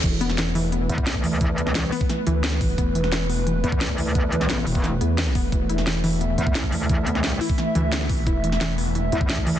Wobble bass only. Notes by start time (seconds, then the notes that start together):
0.89 E2
1.07 D2
1.67 C#2
3.64 E2
3.81 D2
4.67 E1
6.38 E2
6.55 D2
7.15 C#2
9.12 E2
9.30 D2